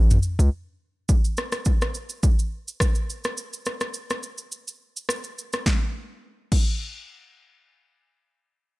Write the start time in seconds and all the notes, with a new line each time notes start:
Already playing: A1
0.10 mid tom, shaker
0.23 shaker
0.39 C#2, shaker
1.09 kick, shaker
1.25 shaker
1.37 cross-stick, shaker
1.52 cross-stick, shaker
1.65 kick, shaker
1.81 cross-stick, shaker
1.94 shaker
2.09 shaker
2.23 kick, shaker
2.39 shaker
2.68 shaker
2.80 kick, cross-stick, shaker
2.95 shaker
3.10 shaker
3.24 cross-stick, shaker
3.37 shaker
3.53 shaker
3.66 cross-stick, shaker
3.81 cross-stick, shaker
3.94 shaker
4.10 cross-stick, shaker
4.23 shaker
4.38 shaker
4.52 shaker
4.68 shaker
4.97 shaker
5.09 cross-stick, shaker
5.24 shaker
5.38 shaker
5.53 cross-stick, shaker
5.66 kick, snare
6.52 kick, crash